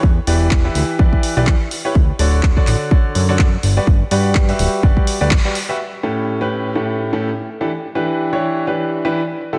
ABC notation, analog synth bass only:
X:1
M:4/4
L:1/16
Q:"Swing 16ths" 1/4=125
K:Amix
V:1 name="Analog synth bass" clef=bass
E,, z E,,,3 z D,, z E,, z2 B,,, E,, z3 | D,, z D,,,3 z A,,, z3 F,,3 z G,,, z | G,,, z G,,3 z D,,, z G,,, z2 D,, G,,, z3 | z16 |
z16 |]